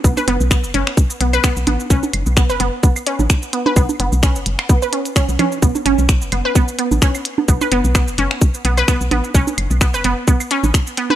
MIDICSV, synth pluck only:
0, 0, Header, 1, 2, 480
1, 0, Start_track
1, 0, Tempo, 465116
1, 45, Time_signature, 4, 2, 24, 8
1, 11512, End_track
2, 0, Start_track
2, 0, Title_t, "Synth pluck"
2, 0, Program_c, 0, 84
2, 45, Note_on_c, 0, 59, 79
2, 83, Note_off_c, 0, 59, 0
2, 177, Note_on_c, 0, 71, 99
2, 224, Note_off_c, 0, 71, 0
2, 285, Note_on_c, 0, 59, 104
2, 323, Note_off_c, 0, 59, 0
2, 524, Note_on_c, 0, 59, 84
2, 563, Note_off_c, 0, 59, 0
2, 765, Note_on_c, 0, 61, 93
2, 788, Note_off_c, 0, 61, 0
2, 1244, Note_on_c, 0, 59, 73
2, 1283, Note_off_c, 0, 59, 0
2, 1376, Note_on_c, 0, 71, 101
2, 1423, Note_off_c, 0, 71, 0
2, 1485, Note_on_c, 0, 59, 109
2, 1523, Note_off_c, 0, 59, 0
2, 1724, Note_on_c, 0, 59, 78
2, 1762, Note_off_c, 0, 59, 0
2, 1963, Note_on_c, 0, 61, 103
2, 1987, Note_off_c, 0, 61, 0
2, 2445, Note_on_c, 0, 59, 85
2, 2483, Note_off_c, 0, 59, 0
2, 2575, Note_on_c, 0, 71, 101
2, 2623, Note_off_c, 0, 71, 0
2, 2683, Note_on_c, 0, 59, 98
2, 2722, Note_off_c, 0, 59, 0
2, 2924, Note_on_c, 0, 59, 88
2, 2962, Note_off_c, 0, 59, 0
2, 3164, Note_on_c, 0, 61, 98
2, 3187, Note_off_c, 0, 61, 0
2, 3644, Note_on_c, 0, 59, 74
2, 3683, Note_off_c, 0, 59, 0
2, 3777, Note_on_c, 0, 71, 103
2, 3824, Note_off_c, 0, 71, 0
2, 3884, Note_on_c, 0, 59, 94
2, 3922, Note_off_c, 0, 59, 0
2, 4126, Note_on_c, 0, 59, 80
2, 4164, Note_off_c, 0, 59, 0
2, 4365, Note_on_c, 0, 61, 99
2, 4388, Note_off_c, 0, 61, 0
2, 4845, Note_on_c, 0, 59, 88
2, 4883, Note_off_c, 0, 59, 0
2, 4977, Note_on_c, 0, 71, 101
2, 5024, Note_off_c, 0, 71, 0
2, 5085, Note_on_c, 0, 61, 77
2, 5142, Note_off_c, 0, 61, 0
2, 5326, Note_on_c, 0, 61, 102
2, 5382, Note_off_c, 0, 61, 0
2, 5564, Note_on_c, 0, 61, 104
2, 5603, Note_off_c, 0, 61, 0
2, 5804, Note_on_c, 0, 59, 78
2, 5843, Note_off_c, 0, 59, 0
2, 6043, Note_on_c, 0, 61, 99
2, 6067, Note_off_c, 0, 61, 0
2, 6525, Note_on_c, 0, 59, 71
2, 6548, Note_off_c, 0, 59, 0
2, 6657, Note_on_c, 0, 71, 105
2, 6704, Note_off_c, 0, 71, 0
2, 6764, Note_on_c, 0, 59, 106
2, 6802, Note_off_c, 0, 59, 0
2, 7004, Note_on_c, 0, 59, 76
2, 7043, Note_off_c, 0, 59, 0
2, 7244, Note_on_c, 0, 61, 107
2, 7267, Note_off_c, 0, 61, 0
2, 7726, Note_on_c, 0, 59, 81
2, 7748, Note_off_c, 0, 59, 0
2, 7857, Note_on_c, 0, 71, 98
2, 7904, Note_off_c, 0, 71, 0
2, 7965, Note_on_c, 0, 59, 109
2, 8003, Note_off_c, 0, 59, 0
2, 8205, Note_on_c, 0, 59, 81
2, 8243, Note_off_c, 0, 59, 0
2, 8446, Note_on_c, 0, 61, 94
2, 8468, Note_off_c, 0, 61, 0
2, 8925, Note_on_c, 0, 59, 78
2, 8948, Note_off_c, 0, 59, 0
2, 9057, Note_on_c, 0, 71, 104
2, 9104, Note_off_c, 0, 71, 0
2, 9165, Note_on_c, 0, 59, 104
2, 9203, Note_off_c, 0, 59, 0
2, 9405, Note_on_c, 0, 59, 78
2, 9443, Note_off_c, 0, 59, 0
2, 9646, Note_on_c, 0, 61, 101
2, 9668, Note_off_c, 0, 61, 0
2, 10126, Note_on_c, 0, 59, 84
2, 10148, Note_off_c, 0, 59, 0
2, 10258, Note_on_c, 0, 71, 96
2, 10304, Note_off_c, 0, 71, 0
2, 10367, Note_on_c, 0, 59, 96
2, 10404, Note_off_c, 0, 59, 0
2, 10606, Note_on_c, 0, 59, 86
2, 10643, Note_off_c, 0, 59, 0
2, 10847, Note_on_c, 0, 61, 101
2, 10869, Note_off_c, 0, 61, 0
2, 11327, Note_on_c, 0, 59, 78
2, 11349, Note_off_c, 0, 59, 0
2, 11457, Note_on_c, 0, 71, 100
2, 11504, Note_off_c, 0, 71, 0
2, 11512, End_track
0, 0, End_of_file